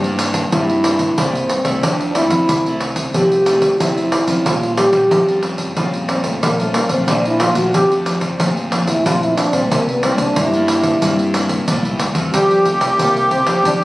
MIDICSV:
0, 0, Header, 1, 6, 480
1, 0, Start_track
1, 0, Key_signature, -1, "major"
1, 0, Tempo, 656455
1, 1342, Time_signature, 4, 2, 24, 8
1, 10120, End_track
2, 0, Start_track
2, 0, Title_t, "Accordion"
2, 0, Program_c, 0, 21
2, 9022, Note_on_c, 0, 67, 91
2, 10120, Note_off_c, 0, 67, 0
2, 10120, End_track
3, 0, Start_track
3, 0, Title_t, "Trombone"
3, 0, Program_c, 1, 57
3, 0, Note_on_c, 1, 60, 87
3, 107, Note_off_c, 1, 60, 0
3, 384, Note_on_c, 1, 64, 99
3, 865, Note_on_c, 1, 60, 81
3, 876, Note_off_c, 1, 64, 0
3, 1345, Note_on_c, 1, 62, 69
3, 1356, Note_off_c, 1, 60, 0
3, 1567, Note_off_c, 1, 62, 0
3, 1571, Note_on_c, 1, 64, 99
3, 2028, Note_off_c, 1, 64, 0
3, 2303, Note_on_c, 1, 67, 89
3, 2781, Note_on_c, 1, 64, 84
3, 2792, Note_off_c, 1, 67, 0
3, 3263, Note_on_c, 1, 65, 82
3, 3274, Note_off_c, 1, 64, 0
3, 3486, Note_off_c, 1, 65, 0
3, 3490, Note_on_c, 1, 67, 106
3, 3947, Note_off_c, 1, 67, 0
3, 4457, Note_on_c, 1, 60, 78
3, 4566, Note_on_c, 1, 57, 84
3, 4577, Note_off_c, 1, 60, 0
3, 4706, Note_on_c, 1, 58, 94
3, 4717, Note_off_c, 1, 57, 0
3, 4833, Note_on_c, 1, 57, 88
3, 4844, Note_off_c, 1, 58, 0
3, 4935, Note_on_c, 1, 58, 86
3, 4945, Note_off_c, 1, 57, 0
3, 5054, Note_on_c, 1, 60, 82
3, 5065, Note_off_c, 1, 58, 0
3, 5190, Note_on_c, 1, 62, 83
3, 5201, Note_off_c, 1, 60, 0
3, 5312, Note_on_c, 1, 64, 94
3, 5323, Note_off_c, 1, 62, 0
3, 5413, Note_on_c, 1, 65, 105
3, 5424, Note_off_c, 1, 64, 0
3, 5529, Note_on_c, 1, 66, 93
3, 5540, Note_off_c, 1, 65, 0
3, 5656, Note_off_c, 1, 66, 0
3, 5664, Note_on_c, 1, 67, 104
3, 5807, Note_off_c, 1, 67, 0
3, 6482, Note_on_c, 1, 64, 90
3, 6623, Note_on_c, 1, 65, 103
3, 6634, Note_off_c, 1, 64, 0
3, 6747, Note_on_c, 1, 64, 91
3, 6758, Note_off_c, 1, 65, 0
3, 6847, Note_on_c, 1, 62, 94
3, 6858, Note_off_c, 1, 64, 0
3, 6968, Note_on_c, 1, 60, 84
3, 6979, Note_off_c, 1, 62, 0
3, 7101, Note_on_c, 1, 58, 77
3, 7112, Note_off_c, 1, 60, 0
3, 7229, Note_on_c, 1, 59, 88
3, 7240, Note_off_c, 1, 58, 0
3, 7331, Note_on_c, 1, 60, 101
3, 7342, Note_off_c, 1, 59, 0
3, 7449, Note_on_c, 1, 62, 91
3, 7460, Note_off_c, 1, 60, 0
3, 7589, Note_on_c, 1, 64, 84
3, 7600, Note_off_c, 1, 62, 0
3, 8305, Note_off_c, 1, 64, 0
3, 9018, Note_on_c, 1, 55, 87
3, 9253, Note_on_c, 1, 57, 79
3, 9264, Note_off_c, 1, 55, 0
3, 9495, Note_off_c, 1, 57, 0
3, 9500, Note_on_c, 1, 58, 83
3, 9725, Note_off_c, 1, 58, 0
3, 9737, Note_on_c, 1, 60, 91
3, 9846, Note_off_c, 1, 60, 0
3, 9985, Note_on_c, 1, 62, 89
3, 10039, Note_off_c, 1, 62, 0
3, 10120, End_track
4, 0, Start_track
4, 0, Title_t, "Nylon-string guitar"
4, 0, Program_c, 2, 24
4, 0, Note_on_c, 2, 43, 50
4, 24, Note_on_c, 2, 55, 59
4, 28, Note_on_c, 2, 58, 61
4, 31, Note_on_c, 2, 64, 63
4, 345, Note_off_c, 2, 55, 0
4, 347, Note_off_c, 2, 58, 0
4, 347, Note_off_c, 2, 64, 0
4, 357, Note_off_c, 2, 43, 0
4, 380, Note_on_c, 2, 48, 54
4, 383, Note_on_c, 2, 55, 56
4, 387, Note_on_c, 2, 64, 70
4, 388, Note_on_c, 2, 58, 54
4, 523, Note_off_c, 2, 55, 0
4, 524, Note_off_c, 2, 58, 0
4, 526, Note_off_c, 2, 64, 0
4, 614, Note_on_c, 2, 55, 51
4, 619, Note_on_c, 2, 58, 54
4, 620, Note_on_c, 2, 64, 55
4, 760, Note_off_c, 2, 55, 0
4, 761, Note_off_c, 2, 58, 0
4, 762, Note_off_c, 2, 64, 0
4, 838, Note_off_c, 2, 48, 0
4, 861, Note_on_c, 2, 43, 56
4, 866, Note_on_c, 2, 58, 61
4, 867, Note_on_c, 2, 55, 60
4, 869, Note_on_c, 2, 64, 70
4, 1088, Note_off_c, 2, 55, 0
4, 1089, Note_off_c, 2, 58, 0
4, 1091, Note_off_c, 2, 64, 0
4, 1205, Note_on_c, 2, 57, 57
4, 1211, Note_on_c, 2, 60, 54
4, 1211, Note_on_c, 2, 64, 61
4, 1318, Note_off_c, 2, 43, 0
4, 1345, Note_on_c, 2, 53, 55
4, 1536, Note_off_c, 2, 57, 0
4, 1537, Note_off_c, 2, 60, 0
4, 1538, Note_off_c, 2, 64, 0
4, 1576, Note_on_c, 2, 57, 56
4, 1579, Note_on_c, 2, 60, 56
4, 1582, Note_on_c, 2, 64, 60
4, 1800, Note_off_c, 2, 53, 0
4, 1804, Note_off_c, 2, 57, 0
4, 1806, Note_off_c, 2, 60, 0
4, 1807, Note_off_c, 2, 64, 0
4, 1825, Note_on_c, 2, 48, 54
4, 1952, Note_on_c, 2, 57, 65
4, 1955, Note_on_c, 2, 60, 66
4, 1958, Note_on_c, 2, 64, 73
4, 2269, Note_off_c, 2, 57, 0
4, 2270, Note_off_c, 2, 60, 0
4, 2272, Note_off_c, 2, 64, 0
4, 2280, Note_off_c, 2, 48, 0
4, 2303, Note_on_c, 2, 53, 59
4, 2306, Note_on_c, 2, 57, 57
4, 2307, Note_on_c, 2, 60, 63
4, 2312, Note_on_c, 2, 64, 70
4, 2445, Note_off_c, 2, 57, 0
4, 2446, Note_off_c, 2, 60, 0
4, 2447, Note_off_c, 2, 64, 0
4, 2537, Note_on_c, 2, 57, 52
4, 2540, Note_on_c, 2, 60, 53
4, 2542, Note_on_c, 2, 64, 61
4, 2741, Note_off_c, 2, 57, 0
4, 2742, Note_off_c, 2, 60, 0
4, 2744, Note_off_c, 2, 64, 0
4, 2759, Note_off_c, 2, 53, 0
4, 2786, Note_on_c, 2, 48, 57
4, 2786, Note_on_c, 2, 57, 59
4, 2790, Note_on_c, 2, 60, 57
4, 2792, Note_on_c, 2, 64, 64
4, 3106, Note_off_c, 2, 57, 0
4, 3106, Note_off_c, 2, 60, 0
4, 3109, Note_off_c, 2, 64, 0
4, 3129, Note_on_c, 2, 55, 57
4, 3133, Note_on_c, 2, 61, 53
4, 3137, Note_on_c, 2, 65, 66
4, 3240, Note_off_c, 2, 48, 0
4, 3265, Note_on_c, 2, 46, 54
4, 3458, Note_off_c, 2, 55, 0
4, 3459, Note_off_c, 2, 61, 0
4, 3461, Note_off_c, 2, 65, 0
4, 3496, Note_on_c, 2, 55, 63
4, 3499, Note_on_c, 2, 61, 54
4, 3504, Note_on_c, 2, 65, 67
4, 3719, Note_off_c, 2, 46, 0
4, 3724, Note_off_c, 2, 55, 0
4, 3726, Note_off_c, 2, 61, 0
4, 3728, Note_off_c, 2, 65, 0
4, 3741, Note_on_c, 2, 53, 51
4, 3868, Note_on_c, 2, 55, 71
4, 3872, Note_on_c, 2, 61, 60
4, 3874, Note_on_c, 2, 65, 74
4, 4187, Note_off_c, 2, 55, 0
4, 4188, Note_off_c, 2, 61, 0
4, 4190, Note_off_c, 2, 65, 0
4, 4198, Note_off_c, 2, 53, 0
4, 4220, Note_on_c, 2, 46, 59
4, 4224, Note_on_c, 2, 55, 66
4, 4225, Note_on_c, 2, 61, 61
4, 4228, Note_on_c, 2, 65, 70
4, 4423, Note_off_c, 2, 55, 0
4, 4425, Note_off_c, 2, 61, 0
4, 4427, Note_off_c, 2, 65, 0
4, 4457, Note_on_c, 2, 55, 51
4, 4459, Note_on_c, 2, 61, 54
4, 4463, Note_on_c, 2, 65, 57
4, 4677, Note_off_c, 2, 46, 0
4, 4685, Note_off_c, 2, 55, 0
4, 4686, Note_off_c, 2, 61, 0
4, 4687, Note_off_c, 2, 65, 0
4, 4704, Note_on_c, 2, 53, 57
4, 4828, Note_on_c, 2, 55, 60
4, 4831, Note_on_c, 2, 61, 69
4, 4836, Note_on_c, 2, 65, 71
4, 5027, Note_off_c, 2, 55, 0
4, 5028, Note_off_c, 2, 61, 0
4, 5030, Note_off_c, 2, 65, 0
4, 5037, Note_off_c, 2, 53, 0
4, 5046, Note_on_c, 2, 53, 65
4, 5048, Note_on_c, 2, 57, 63
4, 5054, Note_on_c, 2, 62, 62
4, 5182, Note_on_c, 2, 46, 60
4, 5375, Note_off_c, 2, 53, 0
4, 5377, Note_off_c, 2, 57, 0
4, 5378, Note_off_c, 2, 62, 0
4, 5417, Note_on_c, 2, 53, 57
4, 5420, Note_on_c, 2, 57, 60
4, 5422, Note_on_c, 2, 62, 66
4, 5638, Note_off_c, 2, 46, 0
4, 5661, Note_on_c, 2, 41, 58
4, 5741, Note_off_c, 2, 53, 0
4, 5742, Note_off_c, 2, 57, 0
4, 5744, Note_off_c, 2, 62, 0
4, 5789, Note_on_c, 2, 53, 66
4, 5792, Note_on_c, 2, 57, 65
4, 5795, Note_on_c, 2, 62, 69
4, 6107, Note_off_c, 2, 53, 0
4, 6108, Note_off_c, 2, 57, 0
4, 6110, Note_off_c, 2, 62, 0
4, 6117, Note_off_c, 2, 41, 0
4, 6143, Note_on_c, 2, 46, 59
4, 6144, Note_on_c, 2, 53, 58
4, 6147, Note_on_c, 2, 57, 59
4, 6148, Note_on_c, 2, 62, 68
4, 6283, Note_off_c, 2, 53, 0
4, 6284, Note_off_c, 2, 57, 0
4, 6286, Note_off_c, 2, 62, 0
4, 6373, Note_on_c, 2, 53, 55
4, 6377, Note_on_c, 2, 57, 53
4, 6381, Note_on_c, 2, 62, 63
4, 6519, Note_off_c, 2, 53, 0
4, 6521, Note_off_c, 2, 57, 0
4, 6522, Note_off_c, 2, 62, 0
4, 6598, Note_off_c, 2, 46, 0
4, 6622, Note_on_c, 2, 41, 61
4, 6625, Note_on_c, 2, 53, 57
4, 6629, Note_on_c, 2, 57, 60
4, 6630, Note_on_c, 2, 62, 64
4, 6944, Note_off_c, 2, 53, 0
4, 6945, Note_off_c, 2, 57, 0
4, 6947, Note_off_c, 2, 62, 0
4, 6965, Note_on_c, 2, 55, 71
4, 6968, Note_on_c, 2, 58, 60
4, 6971, Note_on_c, 2, 64, 61
4, 7079, Note_off_c, 2, 41, 0
4, 7102, Note_on_c, 2, 48, 57
4, 7295, Note_off_c, 2, 55, 0
4, 7296, Note_off_c, 2, 58, 0
4, 7298, Note_off_c, 2, 64, 0
4, 7334, Note_on_c, 2, 55, 54
4, 7339, Note_on_c, 2, 58, 58
4, 7340, Note_on_c, 2, 64, 64
4, 7558, Note_off_c, 2, 48, 0
4, 7582, Note_on_c, 2, 43, 60
4, 7660, Note_off_c, 2, 55, 0
4, 7661, Note_off_c, 2, 58, 0
4, 7662, Note_off_c, 2, 64, 0
4, 7708, Note_on_c, 2, 55, 70
4, 7712, Note_on_c, 2, 58, 59
4, 7714, Note_on_c, 2, 64, 76
4, 8027, Note_off_c, 2, 55, 0
4, 8028, Note_off_c, 2, 58, 0
4, 8029, Note_off_c, 2, 64, 0
4, 8038, Note_off_c, 2, 43, 0
4, 8062, Note_on_c, 2, 48, 61
4, 8066, Note_on_c, 2, 55, 59
4, 8069, Note_on_c, 2, 64, 70
4, 8071, Note_on_c, 2, 58, 58
4, 8204, Note_off_c, 2, 55, 0
4, 8205, Note_off_c, 2, 58, 0
4, 8207, Note_off_c, 2, 64, 0
4, 8295, Note_on_c, 2, 55, 58
4, 8298, Note_on_c, 2, 58, 52
4, 8303, Note_on_c, 2, 64, 65
4, 8500, Note_off_c, 2, 55, 0
4, 8502, Note_off_c, 2, 58, 0
4, 8503, Note_off_c, 2, 64, 0
4, 8519, Note_off_c, 2, 48, 0
4, 8543, Note_on_c, 2, 43, 62
4, 8547, Note_on_c, 2, 55, 67
4, 8551, Note_on_c, 2, 64, 66
4, 8552, Note_on_c, 2, 58, 64
4, 8769, Note_off_c, 2, 55, 0
4, 8770, Note_off_c, 2, 58, 0
4, 8772, Note_off_c, 2, 64, 0
4, 8885, Note_on_c, 2, 60, 68
4, 8890, Note_on_c, 2, 65, 62
4, 8893, Note_on_c, 2, 69, 74
4, 9000, Note_off_c, 2, 43, 0
4, 9024, Note_on_c, 2, 53, 48
4, 9216, Note_off_c, 2, 60, 0
4, 9218, Note_off_c, 2, 65, 0
4, 9219, Note_off_c, 2, 69, 0
4, 9258, Note_on_c, 2, 60, 54
4, 9259, Note_on_c, 2, 65, 50
4, 9264, Note_on_c, 2, 69, 55
4, 9462, Note_off_c, 2, 60, 0
4, 9464, Note_off_c, 2, 65, 0
4, 9464, Note_off_c, 2, 69, 0
4, 9480, Note_off_c, 2, 53, 0
4, 9503, Note_on_c, 2, 48, 49
4, 9506, Note_on_c, 2, 60, 50
4, 9507, Note_on_c, 2, 65, 49
4, 9511, Note_on_c, 2, 69, 62
4, 9729, Note_off_c, 2, 60, 0
4, 9730, Note_off_c, 2, 65, 0
4, 9732, Note_off_c, 2, 69, 0
4, 9846, Note_on_c, 2, 60, 54
4, 9849, Note_on_c, 2, 65, 55
4, 9853, Note_on_c, 2, 69, 58
4, 9936, Note_off_c, 2, 60, 0
4, 9938, Note_off_c, 2, 65, 0
4, 9939, Note_off_c, 2, 69, 0
4, 9961, Note_off_c, 2, 48, 0
4, 9983, Note_on_c, 2, 53, 56
4, 9984, Note_on_c, 2, 60, 54
4, 9986, Note_on_c, 2, 65, 52
4, 9991, Note_on_c, 2, 69, 66
4, 10120, Note_off_c, 2, 53, 0
4, 10120, Note_off_c, 2, 60, 0
4, 10120, Note_off_c, 2, 65, 0
4, 10120, Note_off_c, 2, 69, 0
4, 10120, End_track
5, 0, Start_track
5, 0, Title_t, "Fingered electric bass"
5, 0, Program_c, 3, 33
5, 0, Note_on_c, 3, 43, 93
5, 309, Note_off_c, 3, 43, 0
5, 382, Note_on_c, 3, 43, 89
5, 790, Note_off_c, 3, 43, 0
5, 863, Note_on_c, 3, 36, 81
5, 1067, Note_off_c, 3, 36, 0
5, 1208, Note_on_c, 3, 36, 80
5, 1316, Note_off_c, 3, 36, 0
5, 1344, Note_on_c, 3, 41, 98
5, 1649, Note_off_c, 3, 41, 0
5, 1685, Note_on_c, 3, 41, 87
5, 1795, Note_off_c, 3, 41, 0
5, 1822, Note_on_c, 3, 36, 90
5, 2230, Note_off_c, 3, 36, 0
5, 2302, Note_on_c, 3, 36, 90
5, 2710, Note_off_c, 3, 36, 0
5, 2784, Note_on_c, 3, 41, 79
5, 2987, Note_off_c, 3, 41, 0
5, 3128, Note_on_c, 3, 41, 83
5, 3236, Note_off_c, 3, 41, 0
5, 3261, Note_on_c, 3, 34, 94
5, 3567, Note_off_c, 3, 34, 0
5, 3603, Note_on_c, 3, 34, 86
5, 3713, Note_off_c, 3, 34, 0
5, 3741, Note_on_c, 3, 41, 101
5, 4149, Note_off_c, 3, 41, 0
5, 4220, Note_on_c, 3, 41, 89
5, 4629, Note_off_c, 3, 41, 0
5, 4701, Note_on_c, 3, 34, 84
5, 4906, Note_off_c, 3, 34, 0
5, 5046, Note_on_c, 3, 34, 88
5, 5155, Note_off_c, 3, 34, 0
5, 5184, Note_on_c, 3, 34, 100
5, 5489, Note_off_c, 3, 34, 0
5, 5526, Note_on_c, 3, 34, 78
5, 5635, Note_off_c, 3, 34, 0
5, 5664, Note_on_c, 3, 41, 95
5, 6071, Note_off_c, 3, 41, 0
5, 6143, Note_on_c, 3, 41, 85
5, 6550, Note_off_c, 3, 41, 0
5, 6621, Note_on_c, 3, 34, 91
5, 6825, Note_off_c, 3, 34, 0
5, 6965, Note_on_c, 3, 34, 85
5, 7074, Note_off_c, 3, 34, 0
5, 7101, Note_on_c, 3, 36, 95
5, 7407, Note_off_c, 3, 36, 0
5, 7445, Note_on_c, 3, 36, 80
5, 7554, Note_off_c, 3, 36, 0
5, 7579, Note_on_c, 3, 43, 102
5, 7988, Note_off_c, 3, 43, 0
5, 8060, Note_on_c, 3, 43, 99
5, 8469, Note_off_c, 3, 43, 0
5, 8540, Note_on_c, 3, 34, 84
5, 8649, Note_off_c, 3, 34, 0
5, 8667, Note_on_c, 3, 36, 76
5, 8768, Note_off_c, 3, 36, 0
5, 8773, Note_on_c, 3, 38, 97
5, 8877, Note_off_c, 3, 38, 0
5, 8881, Note_on_c, 3, 40, 90
5, 8999, Note_off_c, 3, 40, 0
5, 9021, Note_on_c, 3, 41, 97
5, 9328, Note_off_c, 3, 41, 0
5, 9367, Note_on_c, 3, 36, 81
5, 9476, Note_off_c, 3, 36, 0
5, 9503, Note_on_c, 3, 36, 85
5, 9809, Note_off_c, 3, 36, 0
5, 9845, Note_on_c, 3, 41, 78
5, 9955, Note_off_c, 3, 41, 0
5, 9984, Note_on_c, 3, 41, 91
5, 10120, Note_off_c, 3, 41, 0
5, 10120, End_track
6, 0, Start_track
6, 0, Title_t, "Pandeiro"
6, 29, Note_on_c, 9, 54, 33
6, 102, Note_off_c, 9, 54, 0
6, 137, Note_on_c, 9, 54, 69
6, 210, Note_off_c, 9, 54, 0
6, 248, Note_on_c, 9, 54, 61
6, 321, Note_off_c, 9, 54, 0
6, 383, Note_on_c, 9, 54, 75
6, 456, Note_off_c, 9, 54, 0
6, 508, Note_on_c, 9, 54, 36
6, 581, Note_off_c, 9, 54, 0
6, 615, Note_on_c, 9, 54, 68
6, 688, Note_off_c, 9, 54, 0
6, 725, Note_on_c, 9, 54, 57
6, 798, Note_off_c, 9, 54, 0
6, 861, Note_on_c, 9, 54, 88
6, 934, Note_off_c, 9, 54, 0
6, 990, Note_on_c, 9, 54, 36
6, 1063, Note_off_c, 9, 54, 0
6, 1093, Note_on_c, 9, 54, 62
6, 1166, Note_off_c, 9, 54, 0
6, 1205, Note_on_c, 9, 54, 60
6, 1278, Note_off_c, 9, 54, 0
6, 1340, Note_on_c, 9, 54, 79
6, 1413, Note_off_c, 9, 54, 0
6, 1466, Note_on_c, 9, 54, 34
6, 1539, Note_off_c, 9, 54, 0
6, 1573, Note_on_c, 9, 54, 70
6, 1646, Note_off_c, 9, 54, 0
6, 1685, Note_on_c, 9, 54, 62
6, 1759, Note_off_c, 9, 54, 0
6, 1820, Note_on_c, 9, 54, 84
6, 1893, Note_off_c, 9, 54, 0
6, 1947, Note_on_c, 9, 54, 35
6, 2020, Note_off_c, 9, 54, 0
6, 2051, Note_on_c, 9, 54, 61
6, 2124, Note_off_c, 9, 54, 0
6, 2164, Note_on_c, 9, 54, 66
6, 2237, Note_off_c, 9, 54, 0
6, 2299, Note_on_c, 9, 54, 73
6, 2372, Note_off_c, 9, 54, 0
6, 2425, Note_on_c, 9, 54, 35
6, 2498, Note_off_c, 9, 54, 0
6, 2531, Note_on_c, 9, 54, 66
6, 2605, Note_off_c, 9, 54, 0
6, 2645, Note_on_c, 9, 54, 62
6, 2718, Note_off_c, 9, 54, 0
6, 2781, Note_on_c, 9, 54, 83
6, 2854, Note_off_c, 9, 54, 0
6, 2906, Note_on_c, 9, 54, 36
6, 2979, Note_off_c, 9, 54, 0
6, 3013, Note_on_c, 9, 54, 71
6, 3086, Note_off_c, 9, 54, 0
6, 3126, Note_on_c, 9, 54, 57
6, 3199, Note_off_c, 9, 54, 0
6, 3260, Note_on_c, 9, 54, 84
6, 3333, Note_off_c, 9, 54, 0
6, 3387, Note_on_c, 9, 54, 32
6, 3460, Note_off_c, 9, 54, 0
6, 3492, Note_on_c, 9, 54, 76
6, 3565, Note_off_c, 9, 54, 0
6, 3603, Note_on_c, 9, 54, 59
6, 3676, Note_off_c, 9, 54, 0
6, 3738, Note_on_c, 9, 54, 88
6, 3811, Note_off_c, 9, 54, 0
6, 3864, Note_on_c, 9, 54, 38
6, 3937, Note_off_c, 9, 54, 0
6, 3968, Note_on_c, 9, 54, 61
6, 4041, Note_off_c, 9, 54, 0
6, 4080, Note_on_c, 9, 54, 57
6, 4153, Note_off_c, 9, 54, 0
6, 4216, Note_on_c, 9, 54, 78
6, 4289, Note_off_c, 9, 54, 0
6, 4340, Note_on_c, 9, 54, 36
6, 4413, Note_off_c, 9, 54, 0
6, 4451, Note_on_c, 9, 54, 67
6, 4524, Note_off_c, 9, 54, 0
6, 4561, Note_on_c, 9, 54, 56
6, 4634, Note_off_c, 9, 54, 0
6, 4701, Note_on_c, 9, 54, 84
6, 4774, Note_off_c, 9, 54, 0
6, 4824, Note_on_c, 9, 54, 36
6, 4897, Note_off_c, 9, 54, 0
6, 4930, Note_on_c, 9, 54, 72
6, 5003, Note_off_c, 9, 54, 0
6, 5041, Note_on_c, 9, 54, 57
6, 5114, Note_off_c, 9, 54, 0
6, 5175, Note_on_c, 9, 54, 83
6, 5248, Note_off_c, 9, 54, 0
6, 5304, Note_on_c, 9, 54, 37
6, 5377, Note_off_c, 9, 54, 0
6, 5410, Note_on_c, 9, 54, 77
6, 5483, Note_off_c, 9, 54, 0
6, 5522, Note_on_c, 9, 54, 60
6, 5595, Note_off_c, 9, 54, 0
6, 5661, Note_on_c, 9, 54, 81
6, 5734, Note_off_c, 9, 54, 0
6, 5788, Note_on_c, 9, 54, 37
6, 5861, Note_off_c, 9, 54, 0
6, 5894, Note_on_c, 9, 54, 67
6, 5967, Note_off_c, 9, 54, 0
6, 6005, Note_on_c, 9, 54, 61
6, 6078, Note_off_c, 9, 54, 0
6, 6140, Note_on_c, 9, 54, 84
6, 6213, Note_off_c, 9, 54, 0
6, 6267, Note_on_c, 9, 54, 34
6, 6340, Note_off_c, 9, 54, 0
6, 6375, Note_on_c, 9, 54, 70
6, 6448, Note_off_c, 9, 54, 0
6, 6489, Note_on_c, 9, 54, 60
6, 6562, Note_off_c, 9, 54, 0
6, 6624, Note_on_c, 9, 54, 89
6, 6697, Note_off_c, 9, 54, 0
6, 6750, Note_on_c, 9, 54, 33
6, 6823, Note_off_c, 9, 54, 0
6, 6855, Note_on_c, 9, 54, 72
6, 6928, Note_off_c, 9, 54, 0
6, 6969, Note_on_c, 9, 54, 58
6, 7042, Note_off_c, 9, 54, 0
6, 7104, Note_on_c, 9, 54, 82
6, 7177, Note_off_c, 9, 54, 0
6, 7229, Note_on_c, 9, 54, 34
6, 7302, Note_off_c, 9, 54, 0
6, 7334, Note_on_c, 9, 54, 70
6, 7407, Note_off_c, 9, 54, 0
6, 7445, Note_on_c, 9, 54, 60
6, 7518, Note_off_c, 9, 54, 0
6, 7578, Note_on_c, 9, 54, 87
6, 7651, Note_off_c, 9, 54, 0
6, 7703, Note_on_c, 9, 54, 35
6, 7776, Note_off_c, 9, 54, 0
6, 7811, Note_on_c, 9, 54, 67
6, 7884, Note_off_c, 9, 54, 0
6, 7922, Note_on_c, 9, 54, 67
6, 7995, Note_off_c, 9, 54, 0
6, 8057, Note_on_c, 9, 54, 76
6, 8130, Note_off_c, 9, 54, 0
6, 8182, Note_on_c, 9, 54, 36
6, 8255, Note_off_c, 9, 54, 0
6, 8292, Note_on_c, 9, 54, 69
6, 8365, Note_off_c, 9, 54, 0
6, 8404, Note_on_c, 9, 54, 56
6, 8477, Note_off_c, 9, 54, 0
6, 8538, Note_on_c, 9, 54, 85
6, 8611, Note_off_c, 9, 54, 0
6, 8666, Note_on_c, 9, 54, 37
6, 8739, Note_off_c, 9, 54, 0
6, 8771, Note_on_c, 9, 54, 69
6, 8844, Note_off_c, 9, 54, 0
6, 8883, Note_on_c, 9, 54, 54
6, 8956, Note_off_c, 9, 54, 0
6, 9021, Note_on_c, 9, 54, 74
6, 9094, Note_off_c, 9, 54, 0
6, 9146, Note_on_c, 9, 54, 31
6, 9219, Note_off_c, 9, 54, 0
6, 9253, Note_on_c, 9, 54, 54
6, 9326, Note_off_c, 9, 54, 0
6, 9367, Note_on_c, 9, 54, 69
6, 9440, Note_off_c, 9, 54, 0
6, 9501, Note_on_c, 9, 54, 78
6, 9574, Note_off_c, 9, 54, 0
6, 9627, Note_on_c, 9, 54, 34
6, 9700, Note_off_c, 9, 54, 0
6, 9733, Note_on_c, 9, 54, 54
6, 9806, Note_off_c, 9, 54, 0
6, 9846, Note_on_c, 9, 54, 72
6, 9919, Note_off_c, 9, 54, 0
6, 9983, Note_on_c, 9, 54, 70
6, 10056, Note_off_c, 9, 54, 0
6, 10120, End_track
0, 0, End_of_file